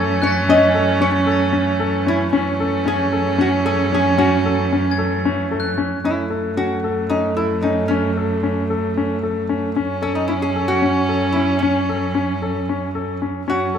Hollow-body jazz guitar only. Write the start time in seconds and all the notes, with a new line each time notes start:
Already playing: C#5
0.23 C#5
0.50 D#5
1.02 C#5
2.08 E4
2.88 G#4
3.41 F#4
3.66 G#4
3.95 G#4
4.18 F#4
6.05 E4
6.57 F#4
7.10 D#4
7.37 E4
7.62 D#4
7.88 C#4
10.03 C#4
10.15 D#4
10.28 E4
10.42 G#4
10.68 F#4
11.32 E4
11.59 C#4
13.50 F#4